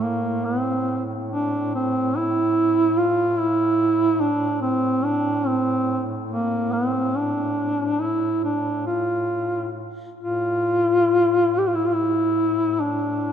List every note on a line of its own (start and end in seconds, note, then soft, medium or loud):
0.00 10.01 A2 soft
0.00 0.47 A#3 medium
0.45 1.05 C4 medium
1.32 1.71 D4 medium
1.75 2.18 C4 medium
2.17 2.99 E4 loud
2.98 3.40 F4 loud
3.39 4.22 E4 loud
4.21 4.61 D4 loud
4.61 5.06 C4 medium
5.05 5.49 D4 medium
5.47 6.04 C4 medium
6.31 6.74 A#3 medium
6.73 7.17 C4 medium
7.16 8.03 D4 medium
8.02 8.44 E4 medium
8.44 8.84 D4 medium
8.87 9.72 F4 medium
10.18 13.32 A2 soft
10.18 11.60 F4 loud
11.58 11.68 G4 medium
11.67 11.76 F4 medium
11.75 11.87 E4 medium
11.85 11.96 F4 medium
11.94 12.82 E4 medium
12.80 13.32 D4 medium